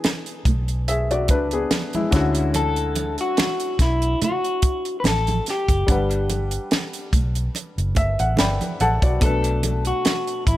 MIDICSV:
0, 0, Header, 1, 5, 480
1, 0, Start_track
1, 0, Tempo, 834492
1, 1464, Time_signature, 4, 2, 24, 8
1, 6080, End_track
2, 0, Start_track
2, 0, Title_t, "Clean electric guitar"
2, 0, Program_c, 0, 27
2, 0, Note_on_c, 0, 68, 79
2, 247, Note_off_c, 0, 68, 0
2, 1471, Note_on_c, 0, 69, 105
2, 1814, Note_off_c, 0, 69, 0
2, 1845, Note_on_c, 0, 66, 87
2, 2193, Note_off_c, 0, 66, 0
2, 2196, Note_on_c, 0, 64, 75
2, 2413, Note_off_c, 0, 64, 0
2, 2440, Note_on_c, 0, 66, 83
2, 2851, Note_off_c, 0, 66, 0
2, 2876, Note_on_c, 0, 71, 68
2, 2908, Note_off_c, 0, 71, 0
2, 2921, Note_on_c, 0, 69, 89
2, 3159, Note_off_c, 0, 69, 0
2, 3166, Note_on_c, 0, 67, 78
2, 4091, Note_off_c, 0, 67, 0
2, 5310, Note_on_c, 0, 69, 99
2, 5676, Note_off_c, 0, 69, 0
2, 5678, Note_on_c, 0, 66, 79
2, 6024, Note_off_c, 0, 66, 0
2, 6027, Note_on_c, 0, 64, 73
2, 6080, Note_off_c, 0, 64, 0
2, 6080, End_track
3, 0, Start_track
3, 0, Title_t, "Grand piano"
3, 0, Program_c, 1, 0
3, 0, Control_c, 1, 64, 127
3, 0, Note_on_c, 1, 52, 53
3, 0, Note_on_c, 1, 59, 49
3, 0, Note_on_c, 1, 62, 49
3, 0, Note_on_c, 1, 68, 60
3, 484, Note_off_c, 1, 59, 0
3, 489, Note_off_c, 1, 62, 0
3, 493, Note_off_c, 1, 68, 0
3, 507, Note_on_c, 1, 76, 59
3, 512, Note_on_c, 1, 68, 49
3, 629, Note_off_c, 1, 76, 0
3, 632, Note_off_c, 1, 68, 0
3, 638, Note_on_c, 1, 74, 60
3, 642, Note_on_c, 1, 66, 55
3, 741, Note_off_c, 1, 74, 0
3, 743, Note_off_c, 1, 66, 0
3, 750, Note_on_c, 1, 71, 66
3, 753, Note_on_c, 1, 62, 55
3, 871, Note_off_c, 1, 71, 0
3, 872, Note_off_c, 1, 62, 0
3, 881, Note_on_c, 1, 68, 62
3, 883, Note_on_c, 1, 59, 50
3, 1105, Note_off_c, 1, 68, 0
3, 1107, Note_off_c, 1, 59, 0
3, 1122, Note_on_c, 1, 64, 58
3, 1124, Note_on_c, 1, 56, 49
3, 1194, Note_off_c, 1, 52, 0
3, 1213, Note_on_c, 1, 50, 71
3, 1223, Note_on_c, 1, 61, 63
3, 1225, Note_off_c, 1, 64, 0
3, 1232, Control_c, 1, 64, 0
3, 1233, Note_on_c, 1, 64, 61
3, 1243, Note_on_c, 1, 66, 78
3, 1322, Control_c, 1, 64, 127
3, 1347, Note_off_c, 1, 56, 0
3, 3114, Note_off_c, 1, 50, 0
3, 3119, Note_off_c, 1, 61, 0
3, 3124, Note_off_c, 1, 64, 0
3, 3129, Note_off_c, 1, 66, 0
3, 3374, Note_on_c, 1, 55, 57
3, 3383, Note_on_c, 1, 62, 47
3, 3390, Control_c, 1, 64, 0
3, 3393, Note_on_c, 1, 78, 46
3, 3402, Note_on_c, 1, 71, 58
3, 3490, Control_c, 1, 64, 127
3, 4583, Note_on_c, 1, 76, 62
3, 4703, Note_off_c, 1, 76, 0
3, 4706, Note_off_c, 1, 78, 0
3, 4715, Note_on_c, 1, 78, 55
3, 4809, Note_off_c, 1, 71, 0
3, 4816, Note_off_c, 1, 78, 0
3, 4826, Note_on_c, 1, 83, 52
3, 4827, Note_on_c, 1, 79, 63
3, 4830, Note_on_c, 1, 74, 47
3, 5048, Note_off_c, 1, 79, 0
3, 5052, Note_off_c, 1, 83, 0
3, 5054, Note_off_c, 1, 74, 0
3, 5066, Note_on_c, 1, 78, 61
3, 5067, Note_on_c, 1, 81, 60
3, 5070, Note_on_c, 1, 69, 54
3, 5188, Note_off_c, 1, 78, 0
3, 5189, Note_off_c, 1, 69, 0
3, 5194, Note_on_c, 1, 74, 55
3, 5198, Note_on_c, 1, 66, 48
3, 5275, Note_off_c, 1, 55, 0
3, 5280, Note_off_c, 1, 62, 0
3, 5288, Note_off_c, 1, 81, 0
3, 5294, Note_on_c, 1, 47, 49
3, 5303, Note_on_c, 1, 57, 47
3, 5310, Control_c, 1, 64, 0
3, 5311, Note_on_c, 1, 62, 46
3, 5321, Note_on_c, 1, 71, 55
3, 5406, Control_c, 1, 64, 127
3, 5421, Note_off_c, 1, 74, 0
3, 5423, Note_off_c, 1, 66, 0
3, 6080, Note_off_c, 1, 47, 0
3, 6080, Note_off_c, 1, 57, 0
3, 6080, Note_off_c, 1, 62, 0
3, 6080, Note_off_c, 1, 71, 0
3, 6080, End_track
4, 0, Start_track
4, 0, Title_t, "Fingered electric bass"
4, 0, Program_c, 2, 33
4, 261, Note_on_c, 2, 35, 79
4, 743, Note_off_c, 2, 35, 0
4, 743, Note_on_c, 2, 37, 68
4, 942, Note_off_c, 2, 37, 0
4, 1223, Note_on_c, 2, 38, 82
4, 1818, Note_off_c, 2, 38, 0
4, 2181, Note_on_c, 2, 35, 79
4, 2380, Note_off_c, 2, 35, 0
4, 2903, Note_on_c, 2, 33, 80
4, 3101, Note_off_c, 2, 33, 0
4, 3269, Note_on_c, 2, 30, 74
4, 3362, Note_off_c, 2, 30, 0
4, 3383, Note_on_c, 2, 31, 84
4, 3779, Note_off_c, 2, 31, 0
4, 4100, Note_on_c, 2, 35, 82
4, 4299, Note_off_c, 2, 35, 0
4, 4474, Note_on_c, 2, 30, 80
4, 4564, Note_off_c, 2, 30, 0
4, 4582, Note_on_c, 2, 31, 69
4, 4689, Note_off_c, 2, 31, 0
4, 4714, Note_on_c, 2, 33, 79
4, 4805, Note_off_c, 2, 33, 0
4, 4825, Note_on_c, 2, 31, 77
4, 4931, Note_off_c, 2, 31, 0
4, 5065, Note_on_c, 2, 33, 80
4, 5171, Note_off_c, 2, 33, 0
4, 5190, Note_on_c, 2, 35, 66
4, 5282, Note_off_c, 2, 35, 0
4, 5302, Note_on_c, 2, 35, 86
4, 5699, Note_off_c, 2, 35, 0
4, 6022, Note_on_c, 2, 33, 79
4, 6080, Note_off_c, 2, 33, 0
4, 6080, End_track
5, 0, Start_track
5, 0, Title_t, "Drums"
5, 22, Note_on_c, 9, 42, 69
5, 27, Note_on_c, 9, 38, 95
5, 33, Note_on_c, 9, 63, 57
5, 80, Note_off_c, 9, 42, 0
5, 84, Note_off_c, 9, 38, 0
5, 90, Note_off_c, 9, 63, 0
5, 151, Note_on_c, 9, 42, 43
5, 208, Note_off_c, 9, 42, 0
5, 261, Note_on_c, 9, 36, 83
5, 264, Note_on_c, 9, 42, 57
5, 268, Note_on_c, 9, 64, 55
5, 318, Note_off_c, 9, 36, 0
5, 321, Note_off_c, 9, 42, 0
5, 325, Note_off_c, 9, 64, 0
5, 392, Note_on_c, 9, 42, 43
5, 450, Note_off_c, 9, 42, 0
5, 506, Note_on_c, 9, 42, 72
5, 564, Note_off_c, 9, 42, 0
5, 637, Note_on_c, 9, 42, 45
5, 695, Note_off_c, 9, 42, 0
5, 737, Note_on_c, 9, 42, 60
5, 741, Note_on_c, 9, 36, 86
5, 741, Note_on_c, 9, 64, 59
5, 795, Note_off_c, 9, 42, 0
5, 799, Note_off_c, 9, 36, 0
5, 799, Note_off_c, 9, 64, 0
5, 869, Note_on_c, 9, 42, 47
5, 927, Note_off_c, 9, 42, 0
5, 982, Note_on_c, 9, 42, 80
5, 983, Note_on_c, 9, 38, 91
5, 985, Note_on_c, 9, 63, 65
5, 1040, Note_off_c, 9, 38, 0
5, 1040, Note_off_c, 9, 42, 0
5, 1042, Note_off_c, 9, 63, 0
5, 1111, Note_on_c, 9, 42, 41
5, 1120, Note_on_c, 9, 63, 58
5, 1168, Note_off_c, 9, 42, 0
5, 1177, Note_off_c, 9, 63, 0
5, 1221, Note_on_c, 9, 42, 58
5, 1222, Note_on_c, 9, 36, 87
5, 1230, Note_on_c, 9, 38, 30
5, 1278, Note_off_c, 9, 42, 0
5, 1280, Note_off_c, 9, 36, 0
5, 1288, Note_off_c, 9, 38, 0
5, 1350, Note_on_c, 9, 42, 54
5, 1407, Note_off_c, 9, 42, 0
5, 1461, Note_on_c, 9, 42, 77
5, 1464, Note_on_c, 9, 62, 47
5, 1519, Note_off_c, 9, 42, 0
5, 1522, Note_off_c, 9, 62, 0
5, 1590, Note_on_c, 9, 42, 43
5, 1647, Note_off_c, 9, 42, 0
5, 1700, Note_on_c, 9, 42, 59
5, 1704, Note_on_c, 9, 62, 42
5, 1758, Note_off_c, 9, 42, 0
5, 1761, Note_off_c, 9, 62, 0
5, 1829, Note_on_c, 9, 42, 48
5, 1886, Note_off_c, 9, 42, 0
5, 1940, Note_on_c, 9, 42, 68
5, 1944, Note_on_c, 9, 38, 90
5, 1954, Note_on_c, 9, 63, 59
5, 1997, Note_off_c, 9, 42, 0
5, 2002, Note_off_c, 9, 38, 0
5, 2011, Note_off_c, 9, 63, 0
5, 2069, Note_on_c, 9, 42, 45
5, 2127, Note_off_c, 9, 42, 0
5, 2180, Note_on_c, 9, 36, 79
5, 2182, Note_on_c, 9, 42, 64
5, 2186, Note_on_c, 9, 38, 31
5, 2238, Note_off_c, 9, 36, 0
5, 2240, Note_off_c, 9, 42, 0
5, 2244, Note_off_c, 9, 38, 0
5, 2312, Note_on_c, 9, 42, 45
5, 2370, Note_off_c, 9, 42, 0
5, 2425, Note_on_c, 9, 42, 70
5, 2428, Note_on_c, 9, 62, 31
5, 2428, Note_on_c, 9, 64, 63
5, 2482, Note_off_c, 9, 42, 0
5, 2485, Note_off_c, 9, 62, 0
5, 2485, Note_off_c, 9, 64, 0
5, 2557, Note_on_c, 9, 42, 46
5, 2614, Note_off_c, 9, 42, 0
5, 2659, Note_on_c, 9, 42, 65
5, 2662, Note_on_c, 9, 36, 82
5, 2716, Note_off_c, 9, 42, 0
5, 2719, Note_off_c, 9, 36, 0
5, 2791, Note_on_c, 9, 42, 45
5, 2849, Note_off_c, 9, 42, 0
5, 2900, Note_on_c, 9, 63, 67
5, 2905, Note_on_c, 9, 42, 89
5, 2906, Note_on_c, 9, 38, 87
5, 2957, Note_off_c, 9, 63, 0
5, 2962, Note_off_c, 9, 42, 0
5, 2963, Note_off_c, 9, 38, 0
5, 3032, Note_on_c, 9, 42, 45
5, 3039, Note_on_c, 9, 63, 55
5, 3090, Note_off_c, 9, 42, 0
5, 3096, Note_off_c, 9, 63, 0
5, 3143, Note_on_c, 9, 42, 54
5, 3152, Note_on_c, 9, 38, 29
5, 3200, Note_off_c, 9, 42, 0
5, 3210, Note_off_c, 9, 38, 0
5, 3270, Note_on_c, 9, 36, 77
5, 3273, Note_on_c, 9, 42, 51
5, 3328, Note_off_c, 9, 36, 0
5, 3331, Note_off_c, 9, 42, 0
5, 3383, Note_on_c, 9, 62, 46
5, 3384, Note_on_c, 9, 36, 102
5, 3384, Note_on_c, 9, 42, 73
5, 3440, Note_off_c, 9, 62, 0
5, 3441, Note_off_c, 9, 36, 0
5, 3442, Note_off_c, 9, 42, 0
5, 3513, Note_on_c, 9, 42, 44
5, 3570, Note_off_c, 9, 42, 0
5, 3621, Note_on_c, 9, 62, 44
5, 3622, Note_on_c, 9, 42, 63
5, 3679, Note_off_c, 9, 62, 0
5, 3680, Note_off_c, 9, 42, 0
5, 3746, Note_on_c, 9, 42, 47
5, 3803, Note_off_c, 9, 42, 0
5, 3860, Note_on_c, 9, 42, 68
5, 3865, Note_on_c, 9, 38, 92
5, 3873, Note_on_c, 9, 63, 57
5, 3917, Note_off_c, 9, 42, 0
5, 3922, Note_off_c, 9, 38, 0
5, 3930, Note_off_c, 9, 63, 0
5, 3989, Note_on_c, 9, 42, 41
5, 4046, Note_off_c, 9, 42, 0
5, 4100, Note_on_c, 9, 36, 79
5, 4102, Note_on_c, 9, 42, 57
5, 4104, Note_on_c, 9, 64, 54
5, 4158, Note_off_c, 9, 36, 0
5, 4160, Note_off_c, 9, 42, 0
5, 4161, Note_off_c, 9, 64, 0
5, 4230, Note_on_c, 9, 42, 42
5, 4287, Note_off_c, 9, 42, 0
5, 4342, Note_on_c, 9, 62, 27
5, 4347, Note_on_c, 9, 42, 77
5, 4399, Note_off_c, 9, 62, 0
5, 4404, Note_off_c, 9, 42, 0
5, 4477, Note_on_c, 9, 42, 43
5, 4534, Note_off_c, 9, 42, 0
5, 4573, Note_on_c, 9, 64, 55
5, 4580, Note_on_c, 9, 42, 62
5, 4582, Note_on_c, 9, 36, 85
5, 4630, Note_off_c, 9, 64, 0
5, 4637, Note_off_c, 9, 42, 0
5, 4639, Note_off_c, 9, 36, 0
5, 4712, Note_on_c, 9, 42, 45
5, 4769, Note_off_c, 9, 42, 0
5, 4813, Note_on_c, 9, 63, 67
5, 4823, Note_on_c, 9, 42, 85
5, 4824, Note_on_c, 9, 38, 94
5, 4871, Note_off_c, 9, 63, 0
5, 4881, Note_off_c, 9, 38, 0
5, 4881, Note_off_c, 9, 42, 0
5, 4952, Note_on_c, 9, 63, 55
5, 4955, Note_on_c, 9, 42, 43
5, 5009, Note_off_c, 9, 63, 0
5, 5012, Note_off_c, 9, 42, 0
5, 5063, Note_on_c, 9, 42, 57
5, 5066, Note_on_c, 9, 63, 52
5, 5120, Note_off_c, 9, 42, 0
5, 5123, Note_off_c, 9, 63, 0
5, 5189, Note_on_c, 9, 36, 79
5, 5191, Note_on_c, 9, 42, 47
5, 5247, Note_off_c, 9, 36, 0
5, 5249, Note_off_c, 9, 42, 0
5, 5298, Note_on_c, 9, 62, 47
5, 5301, Note_on_c, 9, 42, 72
5, 5302, Note_on_c, 9, 36, 95
5, 5355, Note_off_c, 9, 62, 0
5, 5359, Note_off_c, 9, 36, 0
5, 5359, Note_off_c, 9, 42, 0
5, 5430, Note_on_c, 9, 42, 45
5, 5488, Note_off_c, 9, 42, 0
5, 5540, Note_on_c, 9, 42, 57
5, 5541, Note_on_c, 9, 62, 46
5, 5598, Note_off_c, 9, 42, 0
5, 5598, Note_off_c, 9, 62, 0
5, 5665, Note_on_c, 9, 42, 51
5, 5722, Note_off_c, 9, 42, 0
5, 5780, Note_on_c, 9, 42, 73
5, 5785, Note_on_c, 9, 38, 91
5, 5791, Note_on_c, 9, 63, 57
5, 5838, Note_off_c, 9, 42, 0
5, 5842, Note_off_c, 9, 38, 0
5, 5849, Note_off_c, 9, 63, 0
5, 5910, Note_on_c, 9, 42, 43
5, 5967, Note_off_c, 9, 42, 0
5, 6021, Note_on_c, 9, 36, 89
5, 6023, Note_on_c, 9, 42, 61
5, 6078, Note_off_c, 9, 36, 0
5, 6080, Note_off_c, 9, 42, 0
5, 6080, End_track
0, 0, End_of_file